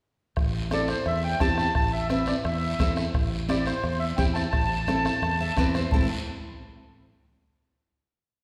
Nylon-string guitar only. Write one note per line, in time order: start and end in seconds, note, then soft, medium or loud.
0.72 0.96 C4 medium
0.72 0.97 E4 medium
0.72 0.97 A4 medium
1.40 1.65 C4 medium
1.40 1.65 E4 medium
1.40 1.65 G4 medium
2.10 2.35 C4 medium
2.10 2.35 E4 medium
2.10 2.35 B4 medium
2.80 3.04 C4 medium
2.80 3.04 E4 medium
2.80 3.05 A4 medium
3.49 3.73 C4 medium
3.49 3.73 E4 medium
3.49 3.74 G4 medium
4.18 4.42 C4 medium
4.18 4.43 E4 medium
4.18 4.43 G4 medium
4.88 5.12 C4 medium
4.88 5.12 E4 medium
4.88 5.13 A4 medium
5.40 5.56 E5 medium
5.58 5.82 C4 medium
5.58 5.82 E4 medium
5.58 5.82 B4 medium
5.58 5.74 D5 medium
5.75 5.91 C5 medium
5.94 6.09 C4 medium
5.94 6.09 E4 medium
5.94 6.09 A4 medium